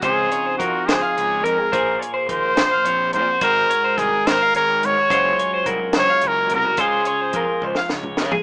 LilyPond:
<<
  \new Staff \with { instrumentName = "Clean electric guitar" } { \time 6/8 \key des \major \tempo 4. = 71 c''8 des''16 c''16 bes'8 c''16 f''16 des''8 bes'16 aes'16 | c''8 des''16 c''16 bes'8 c''16 f''16 des''8 bes'16 ges'16 | c''8 des''16 c''16 bes'8 c''16 f''16 des''8 bes'16 ges'16 | c''8 des''16 c''16 bes'8 c''16 f''16 des''8 bes'16 ges'16 |
c''8 des''16 c''16 bes'8 c''16 f''16 des''8 bes'16 aes'16 | }
  \new Staff \with { instrumentName = "Trumpet" } { \time 6/8 \key des \major aes'4 ges'8 aes'4 bes'8~ | bes'8 r8 c''4. c''8 | bes'4 aes'8 bes'8 bes'8 des''8~ | des''4 r8 des''8 bes'8 bes'8 |
aes'4. r4. | }
  \new Staff \with { instrumentName = "Clean electric guitar" } { \clef bass \time 6/8 \key des \major << { <f c' ees' f'>2. | aes'2. | ges'2. | <ges aes des' f'>2. |
f'2. | } \\ { des4 f4 aes,4 | bes,4 f4 f,4 | aes,4 ees4 aes,4 | ges,4 ges4 des4 |
des4 f4 aes,4 | } >> }
  \new Staff \with { instrumentName = "Fingered electric bass" } { \clef bass \time 6/8 \key des \major des,8 r8 f,16 r16 des,16 r16 des,8 f,16 r16 | bes,,8 r8 ees,16 r16 bes,,16 r16 bes,,8 bes,16 r16 | aes,,8 r8 c,16 r16 aes,,16 r16 aes,,8 aes,16 r16 | ges,,8 r8 c,16 r16 ges,,16 r16 ges,,8 c,16 r16 |
des,8 r8 f,16 r16 des,16 r16 des,8 des16 r16 | }
  \new DrumStaff \with { instrumentName = "Drums" } \drummode { \time 6/8 <hh bd>8 hh8 <hh bd>8 <hh sn>8 hh8 hh8 | <hh bd>8 hh8 <hh bd>8 <hh sn>8 hh8 hh8 | <hh bd>8 hh8 <hh bd>8 <hh sn>8 hh8 hh8 | <hh bd>8 hh8 <hh bd>8 <hh sn>8 hh8 hh8 |
<hh bd>8 hh8 <hh bd>8 bd16 sn16 sn16 toml16 sn16 tomfh16 | }
>>